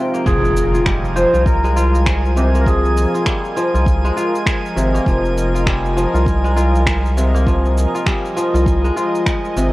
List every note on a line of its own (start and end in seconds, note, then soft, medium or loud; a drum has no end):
0.00 0.31 C3 medium
0.00 9.73 F3 medium
0.00 0.31 G3 medium
0.00 0.31 G#3 medium
0.00 0.28 D#4 medium
0.00 0.74 F4 medium
0.00 9.73 F4 medium
0.00 0.27 G4 medium
0.00 0.26 A#4 medium
0.00 1.64 F5 medium
0.00 0.30 G5 medium
0.00 9.73 A#5 medium
0.14 2.07 A#3 medium
0.14 cabasa soft
0.26 1.26 F1 loud
0.26 1.15 F3 medium
0.26 0.82 G#4 loud
0.26 9.73 G#5 medium
0.26 kick loud
0.26 impact medium
0.26 cabasa soft
0.45 cabasa soft
0.57 cabasa medium
0.74 1.33 F4 medium
0.74 cabasa soft
0.82 9.73 D#5 loud
0.86 3.20 G3 medium
0.86 finger snap loud
0.86 kick loud
0.86 cabasa soft
1.05 cabasa soft
1.16 2.41 F3 medium
1.16 1.46 C5 loud
1.16 cabasa medium
1.34 3.06 C2 medium
1.34 1.76 F4 medium
1.34 cabasa soft
1.46 2.39 A#4 loud
1.46 kick loud
1.46 cabasa soft
1.64 3.98 G#3 loud
1.64 cabasa soft
1.76 3.14 F4 loud
1.76 cabasa medium
1.86 9.73 A#4 medium
1.95 cabasa soft
2.06 finger snap loud
2.06 kick loud
2.06 cabasa soft
2.25 cabasa soft
2.36 4.70 C3 medium
2.36 2.44 G4 medium
2.36 cabasa medium
2.54 4.47 A#3 medium
2.54 cabasa soft
2.61 2.67 A#4 medium
2.66 3.55 F3 medium
2.66 4.43 G#4 medium
2.66 kick loud
2.66 cabasa soft
2.85 cabasa soft
2.97 cabasa medium
3.14 3.74 F4 medium
3.14 cabasa soft
3.26 5.60 G3 medium
3.26 finger snap loud
3.26 kick loud
3.26 cabasa soft
3.45 cabasa soft
3.56 4.81 F3 loud
3.56 cabasa medium
3.74 4.11 C2 medium
3.74 4.16 F4 medium
3.74 cabasa soft
3.86 kick loud
3.86 cabasa soft
4.05 6.39 G#3 loud
4.05 cabasa soft
4.17 5.54 F4 loud
4.17 cabasa medium
4.35 cabasa soft
4.46 finger snap loud
4.46 kick loud
4.46 cabasa soft
4.66 cabasa soft
4.76 5.00 G#1 medium
4.76 7.10 C3 medium
4.76 cabasa medium
4.94 6.87 A#3 medium
4.94 cabasa soft
5.06 6.06 F1 loud
5.06 5.95 F3 medium
5.06 kick loud
5.06 cabasa soft
5.25 cabasa soft
5.38 cabasa medium
5.54 6.14 F4 medium
5.54 cabasa soft
5.66 8.01 G3 medium
5.66 finger snap loud
5.66 kick loud
5.66 cabasa soft
5.85 cabasa soft
5.97 7.21 F3 medium
5.97 cabasa medium
6.14 7.86 C2 medium
6.14 6.56 F4 medium
6.14 cabasa soft
6.26 kick loud
6.26 cabasa soft
6.44 8.78 G#3 loud
6.44 cabasa soft
6.56 7.94 F4 loud
6.56 cabasa medium
6.75 cabasa soft
6.86 finger snap loud
6.86 kick loud
6.86 cabasa soft
7.05 cabasa soft
7.17 9.51 C3 medium
7.17 cabasa medium
7.34 9.27 A#3 medium
7.34 cabasa soft
7.46 8.35 F3 medium
7.46 kick loud
7.46 cabasa soft
7.65 cabasa soft
7.78 cabasa medium
7.95 8.54 F4 medium
7.95 cabasa soft
8.06 9.73 G3 medium
8.06 finger snap loud
8.06 kick loud
8.06 cabasa soft
8.25 cabasa soft
8.37 9.61 F3 medium
8.37 cabasa medium
8.54 8.91 C2 medium
8.54 8.96 F4 medium
8.54 cabasa soft
8.66 kick loud
8.66 cabasa soft
8.85 9.73 G#3 medium
8.85 cabasa soft
8.96 9.73 F4 medium
8.96 cabasa medium
9.10 9.73 G3 medium
9.15 cabasa soft
9.26 finger snap medium
9.26 kick loud
9.26 cabasa soft
9.45 cabasa soft
9.56 9.73 G#1 medium
9.56 9.73 C3 medium
9.56 cabasa medium